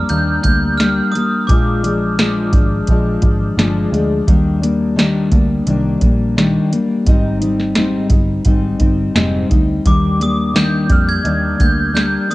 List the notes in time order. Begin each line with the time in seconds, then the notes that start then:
Already playing: F6
0.09 D#2 D#3 G3 A#3 D4 G6, closed hi-hat
0.43 D2 G3 A#3 D4 G6, kick, closed hi-hat
0.78 G3 A#3 D4 F6, snare, closed hi-hat
1.12 A#3 D4 D#6, closed hi-hat
1.16 G3
1.47 A#1 A#2 F3 G#3 D4 D6, kick, closed hi-hat
1.83 F3 G#3 D4, closed hi-hat
2.18 A#2 F3 G#3 D4, snare, closed hi-hat
2.52 G#1 F3 G#3 D4, kick, closed hi-hat
2.87 A#1 A#2 F3 G#3 D4, kick, closed hi-hat
3.22 G#1 F3 G#3 D4, kick, closed hi-hat
3.57 G1 A#2 F3 G#3 D4, snare, closed hi-hat
3.92 D2 F3 G#3 D4, closed hi-hat
4.27 D#2 D#3 G3 A#3 D4, kick, closed hi-hat
4.62 G3 A#3 D4, closed hi-hat
4.96 D#3 G3 A#3 D4, snare, closed hi-hat
5.31 D2 G3 A#3 D4, kick, closed hi-hat
5.66 C2 D#3 G3 A#3 D4, closed hi-hat
6.01 A#1 G3 A#3 D4, kick, closed hi-hat
6.37 D#3 G3 A#3 D4, snare, closed hi-hat
6.72 G3 A#3 D4, closed hi-hat
7.06 G#1 G#2 G3 C4 D#4, kick, closed hi-hat
7.41 G3 C4 D#4, closed hi-hat
7.60 snare
7.75 G#2 G3 C4 D#4, snare, closed hi-hat
8.10 G1 G3 C4 D#4, kick, closed hi-hat
8.45 G#1 G#2 G3 C4 D#4, kick, closed hi-hat
8.80 G1 G3 C4 D#4, kick, closed hi-hat
9.14 F1 G#2 G3 C4 D#4, snare, closed hi-hat
9.49 D2 G3 C4 D#4, kick, closed hi-hat
9.85 D#2 D#3 G3 A#3 D4 D6, kick, closed hi-hat
10.20 G3 A#3 D4 D#6, closed hi-hat
10.53 D#3 G3 A#3 D4, snare, closed hi-hat
10.58 G6
10.88 F2 G3 A#3 D4 F6, kick, closed hi-hat
11.09 G#6
11.23 D#2 D#3 G3 A#3 D4, closed hi-hat
11.59 D2 G3 A#3 D4 G6, kick, closed hi-hat
11.94 G3 A#3 D4 G6, snare, closed hi-hat
12.29 A#3 D4 D#6, closed hi-hat